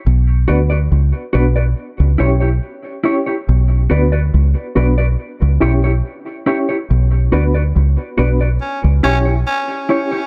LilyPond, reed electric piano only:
\new Staff \with { instrumentName = "Reed electric piano" } { \time 4/4 \key b \minor \tempo 4 = 70 r8 <b d' fis' b'>16 r8. <b d' fis' b'>16 r8. <cis' e' g' cis''>16 r8. <cis' e' g' cis''>16 r16 | r8 <b d' fis' b'>16 r8. <b d' fis' b'>16 r8. <cis' e' g' cis''>16 r8. <cis' e' g' cis''>16 r16 | r8 <b d' fis' b'>16 r8. <b d' fis' b'>16 r8. <cis' e' g' cis''>16 r8. <cis' e' g' cis''>16 r16 | }